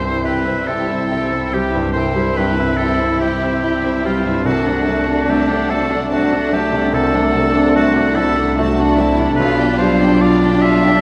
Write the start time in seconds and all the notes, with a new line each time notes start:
Already playing: C2 G2 G3 E4 C5
0.02 C4 E4 C5 E5
0.23 C4 E4 G4 B4 G5
0.45 C4 E4 C5 E5
0.65 C4 E4 G4 A4 G5
0.85 E4 C5 E5
0.90 C4
1.07 C4 G5
1.11 E4 G4
1.27 E4 C5 E5
1.34 C4
1.48 C4 G4 G5
1.53 G3 G4
1.70 E4 C5 E5
1.75 G2
1.92 C2 G3 C4 E4 G4 C5 G5
2.13 G3 E4 C5 E5
2.34 C4 G4 B4 G5
2.38 G2
2.56 E4 C5 E5
2.60 C4
2.78 C4 E4 G4 A4 G5
2.99 C4 E4 C5 E5
3.19 G3 C4 E4 G4 G5
3.40 C4 E4 C5 E5
3.61 C4 E4 G4 G5
3.81 C4 E4 C5 E5
4.03 G3 C4 F4 G4 G5
4.24 G2 E4 C5 E5
4.44 C2 A3 C4 D4 F#4 A5
4.64 C3 D4 A4 F#5
4.86 A3 C4 F#4 A5
5.06 D4 A4 F#5
5.26 A3 C4 F#4 G4 A5
5.46 D4 A4 F#5
5.67 A3 C4 D4 F#4 A4 A5
5.89 D4 A4 F#5
6.09 A3 C4 F#4 A5
6.30 D4 A4 F#5
6.50 A3 C4 F#4 G4 A5
6.71 C3 D4 A4
6.75 F#5
6.91 C2 A3 C4 D4 F#4 A4 A5
7.11 A3 D4 A4 F#5
7.31 C4 F#4 A5
7.35 C3
7.52 D4 A4 F#5
7.73 A3 C4 F#4 A5
7.95 D4 A4 F#5
8.15 A3 C4 D4 E4 F#4 A4
8.19 A5
8.36 D4 A4 F#5
8.56 A3 C4 F#4 A5
8.76 D4 A4 F#5
8.96 A3 C4 E4 F#4 A5
9.17 C3 D4 A4 F#5
9.36 B1 G3 B3 D4 F4 B4 F5
9.40 B1
9.58 B2 D4 G4 G5
9.78 G3 B3 F4 C5 F5
9.98 D4 G4 G5
10.20 B3 F4 D5 F5
10.43 D4 G4 G5
10.62 B3 F4 E5 F5
10.83 D4 G4 G5